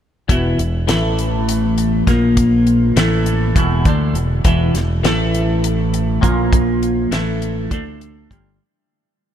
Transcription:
0.28 E1 E2 B2 E3, kick, closed hi-hat
0.58 E1 E2 B2, closed hi-hat
0.88 A1 A2 E3 A3, snare, closed hi-hat
1.19 closed hi-hat
1.49 closed hi-hat
1.78 closed hi-hat
2.07 A#1 A#2 F3 A#3, kick, snare, closed hi-hat
2.37 kick, closed hi-hat
2.67 closed hi-hat
2.96 A1 A2 E3 A3, snare, closed hi-hat
3.26 closed hi-hat
3.55 E1 E2 B2 E3, kick, closed hi-hat
3.85 D2 D3 A3 D4, kick, closed hi-hat
4.14 E1 E2 B2, closed hi-hat
4.45 E1 E2 B2 E3, kick, closed hi-hat
4.74 E1 E2 B2, snare, closed hi-hat
5.03 A1 A2 E3 A3, snare, closed hi-hat
5.34 closed hi-hat
5.64 closed hi-hat
5.94 closed hi-hat
6.21 A#1 A#2 F3 A#3, kick, closed hi-hat
6.53 kick, closed hi-hat
6.83 closed hi-hat
7.11 A1 A2 E3 A3, snare, closed hi-hat
7.42 closed hi-hat
7.71 D2 D3 A3 D4, kick, closed hi-hat
8.01 closed hi-hat
8.30 G1 G2 D3 G3, kick, closed hi-hat

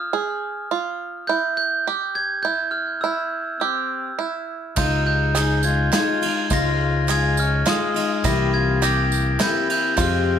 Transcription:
Already playing: F4 F6
0.13 G#4
0.71 F4
1.27 E4 G6
1.57 G6
1.87 G4
2.15 G#6
2.43 E4 G6
2.71 F6
3.01 E4 E6
3.60 C4 G4 E6
4.19 E4
4.76 C#2 C#3 F3 G#3 D#4 F4 G6, kick, clap, ride, tambourine
5.07 D#4 G6, clap
5.35 F3 G#3 D#4 F4 G#4, clap, ride
5.63 D#4 F4 G#6, tambourine
5.67 G#3
5.92 F3 G#3 D#4 F4 G#6, snare, clap, ride
6.08 clap
6.22 G#3 D#4 F4, ride
6.50 C#2 C#3 F3 G#3 D#4 F4 A#6, kick, clap, ride, tambourine
6.81 clap
7.07 F3 G#3 D#4 F4 G#4 G#6, clap, ride
7.37 C#4 F6, tambourine
7.65 F3 G#3 D#4 F4 D#6, snare, clap, ride
7.81 clap
7.94 G#3 D#4 F4, ride
8.24 C2 C3 E3 A#3 C4 E4 G4 A#6, kick, clap, ride, tambourine
8.54 F4 G#6, clap
8.81 E3 A#3 C4 G4 A#6, clap, ride
9.12 tambourine
9.39 E3 A#3 C4 E4 G4 G6, snare, clap, ride
9.55 clap
9.70 E4 G6, ride
9.97 F2 C3 F3 G#3 C4 F4 G4 F6, kick, clap, ride, tambourine
10.12 tambourine

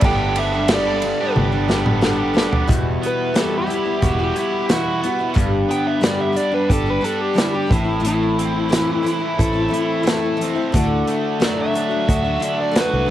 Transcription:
0.01 G1 G2 D3 G3 B3 D4 A4 G5, kick, ride
0.06 D4 G4
0.36 G3 B3 D4 E5, ride
0.40 G4
0.53 B3 D4 A4
0.68 G2 D3 G3 B3 D4 A4, snare, ride
0.73 B3 D4 G4 D5
0.86 G3 B3 D4 G4
1.02 G3 B3 D4 A4, muted overdriven electric guitar stroke, ride
1.20 G3 B3 D4 G4
1.36 G1, high tom
1.52 B3 D4 A4
1.68 G3 B3 D4 A4, snare
1.73 G4
1.86 mid tom
2.01 G2 D3 G3 B3 D4 A4, snare
2.06 D4 G4
2.19 G3 B3 D4 G4
2.34 G3 B3 D4 A4, snare
2.38 G4
2.51 G3 B3 D4 G4, floor tom
2.67 E1 E2 B2 G3 B3 E4 F#4, kick, closed hi-hat
3.02 B3, closed hi-hat
3.07 B4
3.34 E2 B2 G3 B3 E4 F#4, snare, closed hi-hat
3.40 A4
3.58 G4
3.66 G3 B3 E4 F#4, closed hi-hat
3.85 G3 B3 E4
4.02 E1 F#4, kick, closed hi-hat
4.19 G3 B3 E4 F#4
4.23 G4
4.35 G3 B3 E4, closed hi-hat
4.69 E2 B2 G3 B3 E4 F#4, snare, closed hi-hat
5.01 G3 B3 E4, closed hi-hat
5.05 F#4
5.19 G3 B3 E4 F#4
5.34 G1 G2 D3 G3 B3 D4 G4, kick, closed hi-hat
5.68 B3 G5, closed hi-hat
5.87 E5
6.01 G2 D3 G3 B3 D4 G4 D5, snare, closed hi-hat
6.21 E5
6.33 G3 B3 D4 G4 D5, closed hi-hat
6.51 G3 B3 D4 G4 B4
6.69 G1 G4 A4, kick, closed hi-hat
6.86 G3 B3 D4 G4
6.90 B4
7.01 G3 B3 D4 G4, closed hi-hat
7.05 A4
7.21 G4
7.34 G2 D3 G3 B3 D4 G4, closed hi-hat
7.38 E4, snare
7.55 G4
7.67 A2 E3 A3 C4 E4
7.71 A1 E4, kick, closed hi-hat
7.84 A3 C4 E4
8.00 A2 E3 A3 C4 E4
8.05 E4, closed hi-hat
8.38 C4, closed hi-hat
8.69 A2 E3 A3 C4 E4, snare, closed hi-hat
9.03 E3 A3 C4 E4, closed hi-hat
9.19 A3 C4 E4
9.38 A1 A4, kick, closed hi-hat
9.53 A3 C4 E4
9.69 E3 A3 C4 E4
9.73 E4, closed hi-hat
10.03 A2 E3 A3 C4 E4 A4, closed hi-hat
10.08 snare
10.37 E3 A3 C4 E4
10.41 C4, closed hi-hat
10.55 A3 C4 E4
10.72 D2 D3 A3 D4 F#4, kick, closed hi-hat
11.07 A3, closed hi-hat
11.40 D3 F#3 A3 D4 F#4 D5, snare, closed hi-hat
11.61 E5
11.73 D3 A3 D4 F#4, closed hi-hat
11.89 A3 D4 F#4
12.08 D2 F#4, kick, closed hi-hat
12.24 A3 D4 F#4
12.40 D3 A3 D4 F#4, closed hi-hat
12.61 D5
12.71 D3 A3 D4 F#4
12.75 F#4, snare, closed hi-hat
12.80 B4
12.93 C2
13.06 D3

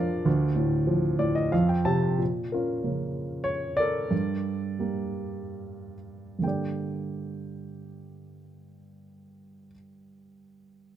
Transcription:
Already playing: A#2 F3 D4 F4 A#4 D5 F5
0.25 D2
0.56 A2
0.87 F3
1.19 A2 D5
1.35 D#5
1.52 F2 F5
1.69 G5
1.85 C3 A5
2.19 A#2
2.52 C#4 F4 A#4
2.83 C#3 F3 A#3
3.44 C#5
3.77 A#4 D5
3.81 A4
4.11 G2
4.79 G3 A#3
6.39 G2 D3 A#3
6.44 G4 A4 D5 G5

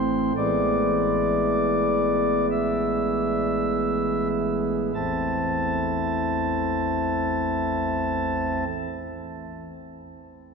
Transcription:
Already playing: A1 A2 E3 A3 C4 C5
0.37 A1 A2 E3 G#3 B3 D5
2.51 E5
4.94 A1 E2 E3 A3 C4 E4 A5

